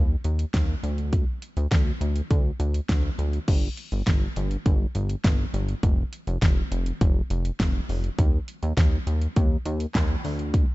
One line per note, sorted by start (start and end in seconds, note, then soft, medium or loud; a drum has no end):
0.00 0.16 D#2 loud
0.24 0.45 D#2 loud
0.24 closed hi-hat medium
0.39 closed hi-hat medium
0.54 0.75 D#2 loud
0.54 kick loud
0.54 snare loud
0.54 closed hi-hat medium
0.83 1.25 D2 medium
0.83 closed hi-hat medium
0.98 closed hi-hat soft
1.13 kick loud
1.13 closed hi-hat medium
1.42 closed hi-hat medium
1.57 1.67 D2 loud
1.57 closed hi-hat medium
1.71 1.92 D2 loud
1.71 kick loud
1.71 snare loud
1.71 closed hi-hat medium
2.01 2.21 D2 medium
2.01 closed hi-hat medium
2.16 closed hi-hat medium
2.31 2.51 D2 loud
2.31 kick loud
2.31 closed hi-hat medium
2.60 2.80 D2 loud
2.60 closed hi-hat medium
2.74 closed hi-hat medium
2.89 3.10 D2 loud
2.89 kick loud
2.89 snare loud
2.89 closed hi-hat medium
3.19 3.39 D2 loud
3.19 closed hi-hat medium
3.33 closed hi-hat soft
3.48 3.69 G1 loud
3.48 kick loud
3.48 closed hi-hat medium
3.48 crash medium
3.77 closed hi-hat medium
3.92 4.02 G1 medium
3.92 closed hi-hat medium
4.07 4.27 G1 medium
4.07 kick loud
4.07 snare loud
4.07 closed hi-hat medium
4.36 4.57 G1 loud
4.36 closed hi-hat medium
4.51 closed hi-hat medium
4.66 4.86 G1 loud
4.66 kick loud
4.66 closed hi-hat medium
4.95 5.16 G1 loud
4.95 closed hi-hat medium
5.09 closed hi-hat medium
5.24 5.45 G1 loud
5.24 kick loud
5.24 snare loud
5.24 closed hi-hat medium
5.54 5.74 G1 loud
5.54 closed hi-hat medium
5.69 closed hi-hat soft
5.83 6.04 F1 loud
5.83 kick loud
5.83 closed hi-hat medium
6.13 closed hi-hat medium
6.27 6.38 F1 loud
6.27 closed hi-hat medium
6.42 6.63 F1 loud
6.42 kick loud
6.42 snare loud
6.42 closed hi-hat medium
6.72 6.92 F1 medium
6.72 closed hi-hat medium
6.86 closed hi-hat medium
7.01 7.22 F1 loud
7.01 kick loud
7.01 closed hi-hat medium
7.30 7.51 F1 loud
7.30 closed hi-hat medium
7.45 closed hi-hat medium
7.60 7.80 F1 loud
7.60 kick loud
7.60 snare loud
7.60 closed hi-hat medium
7.89 8.10 F1 loud
7.89 open hi-hat medium
8.04 closed hi-hat soft
8.19 8.39 D#2 loud
8.19 kick loud
8.19 closed hi-hat medium
8.48 closed hi-hat medium
8.63 8.73 D#2 loud
8.63 closed hi-hat medium
8.77 8.98 D#2 loud
8.77 kick loud
8.77 snare loud
8.77 closed hi-hat medium
9.07 9.27 D#2 loud
9.07 closed hi-hat medium
9.21 closed hi-hat medium
9.36 9.57 D#2 loud
9.36 kick loud
9.36 closed hi-hat medium
9.66 9.86 D#2 loud
9.66 closed hi-hat medium
9.80 closed hi-hat medium
9.95 10.16 D#2 loud
9.95 kick loud
9.95 snare loud
9.95 clap medium
9.95 closed hi-hat medium
10.24 10.66 D2 loud
10.24 open hi-hat medium
10.39 closed hi-hat soft
10.54 kick loud
10.54 closed hi-hat medium